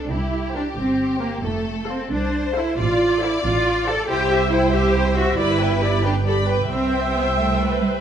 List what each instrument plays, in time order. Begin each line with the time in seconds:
Already playing: cello section D4, violin section A4
0.10 double bass section C2, cello section E4, violin section G4
0.54 cello section D4, viola section A#4 C5, violin section G5
0.76 double bass section G1, cello section C4
1.20 cello section A#3, viola section A#4 C5, violin section G5
1.43 double bass section F1, cello section A3, violin section A4
1.88 cello section C4, viola section A4 C5, violin section F5
2.11 double bass section C2, cello section D4, violin section C5
2.56 cello section E4, viola section A4 C5, violin section F5
2.77 double bass section A1, cello section F4, violin section D5
3.21 cello section E4, viola section A4 C5, violin section F5
3.43 double bass section A1, cello section F4
3.86 cello section A4, viola section A4 C5, violin section F5
4.08 double bass section C2, viola section E4 C5, cello section G4, violin section C5 G5
4.29 viola section G4 E5, violin section E5
4.51 viola section E4 C5, cello section E4, violin section G5
4.73 viola section G4 E5, cello section G4, violin section E5
4.95 viola section E4 C5, violin section G5
5.16 cello section F#4, viola section G4 E5, violin section E5
5.38 double bass section G1, cello section E4, viola section G4 D5, violin section B4 B5
5.59 viola section B4, violin section G5
5.82 viola section G4 D5, violin section B5
6.04 cello section D4, violin section G4 G5, viola section B4
6.25 viola section G4 D5, violin section A4 B5
6.47 viola section B4, violin section B4 G5
6.69 double bass section C2, cello section C4, viola section C5 E5, violin section C5 G5
7.15 cello section B3
7.36 cello section A3
7.60 viola section B4
7.82 cello section G3